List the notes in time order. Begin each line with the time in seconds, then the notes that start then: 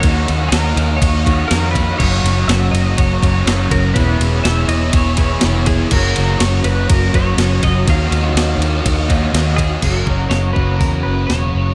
Already playing: F#5
0.00 D#2 D#3 A#3 C#5 F5 D#6, kick, ride
0.05 D#4 F#4
0.28 D#2, snare, ride
0.49 D#2 A#4, snare, ride
0.75 D#2 D#3 A#3 D#4, ride
0.97 C#5
1.02 D#2, kick, ride
1.26 D#3 A#3 D#4 F#4, kick, snare, ride
1.48 F2 D#3 A#3 A#4, snare, ride
1.52 D#3 A#3 D#4 F#4
1.71 B4
1.75 kick, ride
1.98 F#1 F#2 C#3 F#3 A#3 C#4 F#4 C#5 F#5 A#5, kick, crash
2.24 F#1, snare, ride
2.48 F#1 E5, snare, ride
2.71 F#1 F#2 C#3 F#3 D#5, ride
2.98 F#1 C#5, kick, ride
3.23 F#1 F#3 A#3 C#4 F#4, kick, snare, ride
3.44 F#1 F#2 C#3 F#3 A#3, snare, ride
3.48 C#4 F#4
3.71 F#1 A#4, kick, ride
3.92 E2 B2 E3 B4 G#5 B5 E6, kick
3.96 E1 E3 B3 E4 G#4, ride
4.20 E1, ride
4.44 E1 E5, snare, ride
4.67 E1 E2 B2 E3 D#5, ride
4.93 E1 C#5, kick, ride
5.17 B3 E4 G#4, kick, snare, ride
5.21 E3
5.41 F1 E2 B2 E3 B3 E4, snare, ride
5.45 E3 G#4
5.66 G#4, kick, ride
5.89 F#1 F#2 C#3 F#3 A#3 A#4 A#5 D#6, kick, crash
5.94 C#4 F#4
6.16 F#1, ride
6.39 F#1 C#5, snare, ride
6.64 F#1 F#2 C#3 F#3 B4, ride
6.89 F#1 A#4, kick, ride
7.14 F#1 F#3 A#3 C#4 F#4 C#5, kick, ride
7.36 F#1 F#2 C#3 F#3 A#3, snare, ride
7.40 C#4 F#4
7.63 F#1 D#5, kick, ride
7.85 D#2 D#3 A#3 D#4 F5, kick, ride
7.89 D#4 F#4 F5
8.11 D#2, ride
8.35 D#2, snare, ride
8.58 D#2 D#3 A#3 D#4
8.62 ride
8.85 D#2, kick, ride
9.09 D#3 A#3 D#4 F#4, kick, ride
9.31 D#2 D#3 A#3 D#4, snare, ride
9.35 A#3 D#4 F#4
9.57 G#4, kick, ride
9.81 F#1 F#2 C#3 F#3 A#3 A#4 C#5 F#5 A#5 D#6, kick, open hi-hat, crash
9.86 C#4
10.07 F#1, kick
10.30 F#1 C#5, snare, open hi-hat
10.53 F#1 C#3 F#3 B4, kick
10.58 F#2
10.79 E2 A#4, kick, open hi-hat
11.03 F#1 B4
11.27 E1 C#5, snare, open hi-hat
11.55 F#1